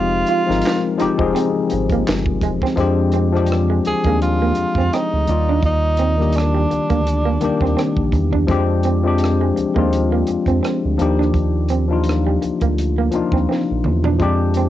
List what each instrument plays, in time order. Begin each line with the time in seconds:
Already playing: analog synth bass F1, tine electric piano F3 G#3 C4 D#4 G4, tenor saxophone F4
0.26 clean electric guitar F4, closed hi-hat
0.46 analog synth bass G#1, tine electric piano F3 G#3 C4 D#4 A#4
0.50 snare
0.61 closed hi-hat
0.66 snare, clap
0.97 analog synth bass F1, tine electric piano F3 G#3 C4 D#4, clean electric guitar D#4, closed hi-hat
1.02 tine electric piano G4
1.17 analog synth bass F1, tine electric piano F3 G#3 C4 D#4, kick
1.22 tine electric piano G#4
1.35 clean electric guitar C4, closed hi-hat
1.70 analog synth bass G#1, muted clean electric guitar stroke, closed hi-hat
1.90 clean electric guitar A#3, kick, closed hi-hat
2.08 analog synth bass G1, muted clean electric guitar stroke, snare, clap, closed hi-hat
2.26 kick
2.41 analog synth bass E1, clean electric guitar G#3, kick, closed hi-hat
2.62 clean electric guitar C4, kick, snare
2.76 analog synth bass F2, tine electric piano F3 G#3 C4 D4, kick, closed hi-hat
2.80 tine electric piano G4
3.12 clean electric guitar C4, closed hi-hat
3.32 tine electric piano F3 G#3 C4 D4, cross-stick
3.36 tine electric piano G4
3.47 closed hi-hat
3.52 cross-stick
3.70 clean electric guitar G#3
3.85 analog synth bass D#2, tenor saxophone G#4, muted clean electric guitar stroke, closed hi-hat
4.03 analog synth bass D#2, tine electric piano F3 G#3 C4 D4, clean electric guitar A#3, kick, closed hi-hat
4.07 tine electric piano G#4
4.22 tenor saxophone F4, closed hi-hat
4.42 clean electric guitar A#3
4.55 analog synth bass F2, muted clean electric guitar stroke, closed hi-hat
4.75 analog synth bass F2, clean electric guitar C4, kick
4.80 cross-stick
4.93 clean electric guitar C4, tenor saxophone D#4, cross-stick, closed hi-hat
5.13 analog synth bass D2
5.27 analog synth bass D#2, tine electric piano D#3 G3 A#3 D5, muted clean electric guitar stroke, closed hi-hat
5.31 tine electric piano F4
5.49 clean electric guitar D4
5.63 analog synth bass D#2, tenor saxophone D#4, kick, closed hi-hat
5.97 clean electric guitar C4, closed hi-hat
6.17 tine electric piano D#3 G3 A#3 D4, cross-stick
6.22 tine electric piano G4
6.33 tenor saxophone D4, closed hi-hat
6.38 cross-stick
6.55 clean electric guitar G3
6.71 analog synth bass D2, muted clean electric guitar stroke, closed hi-hat
6.90 analog synth bass D2, clean electric guitar A#3, kick, closed hi-hat
7.07 closed hi-hat
7.25 clean electric guitar A#3
7.40 analog synth bass D#2, tine electric piano D#3 G3 A#3 D4 G4, muted clean electric guitar stroke, closed hi-hat
7.61 analog synth bass D#2, clean electric guitar C4, kick
7.65 cross-stick
7.77 clean electric guitar C4, cross-stick, closed hi-hat
7.97 analog synth bass A#1, kick
8.12 analog synth bass E2, muted clean electric guitar stroke, kick, closed hi-hat
8.33 clean electric guitar D4, kick
8.47 analog synth bass F2, tine electric piano F3 G#3 C4 D4, kick, closed hi-hat
8.51 tine electric piano G4
8.83 clean electric guitar C4, closed hi-hat
9.03 tine electric piano F3 G#3 C4 D4
9.07 tine electric piano G4
9.18 closed hi-hat
9.24 cross-stick
9.41 clean electric guitar G#3
9.56 analog synth bass D#2, muted clean electric guitar stroke, closed hi-hat
9.74 analog synth bass D#2, tine electric piano F3 G#3 C4 D4, clean electric guitar A#3, kick
9.78 tine electric piano F4
9.93 closed hi-hat
10.12 clean electric guitar A#3
10.27 analog synth bass F2, muted clean electric guitar stroke, closed hi-hat
10.46 analog synth bass F2, clean electric guitar C4, kick, closed hi-hat
10.63 clean electric guitar C4, cross-stick, closed hi-hat
10.85 analog synth bass D2
10.98 analog synth bass D#2, tine electric piano F3 A#3 D4 D#4, muted clean electric guitar stroke, closed hi-hat
11.02 tine electric piano G4
11.19 clean electric guitar D4, cross-stick
11.34 analog synth bass D#2, kick, closed hi-hat
11.69 clean electric guitar C4, closed hi-hat
11.88 tine electric piano F3 A#3 D4 D#4
11.92 tine electric piano F4
12.04 closed hi-hat
12.09 cross-stick
12.27 clean electric guitar G3
12.42 analog synth bass D2, muted clean electric guitar stroke, closed hi-hat
12.61 analog synth bass D2, clean electric guitar A#3, kick, closed hi-hat
12.78 closed hi-hat
12.98 clean electric guitar A#3
13.11 analog synth bass D#2, tine electric piano F3 A#3 D4 D#4, muted clean electric guitar stroke, closed hi-hat
13.15 tine electric piano F4
13.32 analog synth bass D#2, clean electric guitar C4, kick
13.36 cross-stick
13.49 clean electric guitar C4, snare
13.71 analog synth bass A#1
13.84 analog synth bass E2, muted clean electric guitar stroke, mid tom
14.04 clean electric guitar D4, floor tom
14.19 analog synth bass F2, tine electric piano F3 G#3 C4 D4 G4, kick, closed hi-hat
14.54 clean electric guitar C4, closed hi-hat